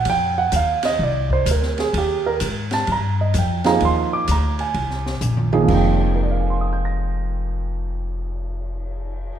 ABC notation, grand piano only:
X:1
M:4/4
L:1/16
Q:"Swing" 1/4=128
K:Fdor
V:1 name="Grand piano"
g2 _g2 f2 e2 d2 c2 B2 A2 | G2 B2 z2 =a2 b2 e2 g2 b2 | c'2 d'2 b2 a8- a z | z4 [Bdfac'e'g'b']12- |
[Bdfac'e'g'b']16 |]
V:2 name="Grand piano"
z16 | z12 z2 [F,B,EA]2- | [F,B,EA]4 z8 z2 [F,B,EA]2 | [F,,F,A,B,Eg]16- |
[F,,F,A,B,Eg]16 |]